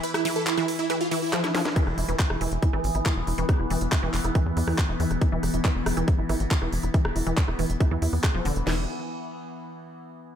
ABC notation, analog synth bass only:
X:1
M:4/4
L:1/16
Q:1/4=139
K:none
V:1 name="Analog synth bass" clef=bass
z16 | z E,,, E,,, E,,, z E,,, E,,, E,,, z ^G,,, G,,, G,,, z E,,, E,,, E,,, | z E,,, E,,, E,,, z E,,, E,,, E,,, z E,, E,, E,, z E,,, E,, E,,, | z E,,, E,,, E,,, z E,,, E,,, E,,, z ^G,,, G,,, G,,, z E,,, E,,, E,,, |
z E,,, E,,, E,,, z E,,, E,,, E,,, z E,, E,, E,, z E,,, E,,, E,,, | E,,,2 z12 z2 |]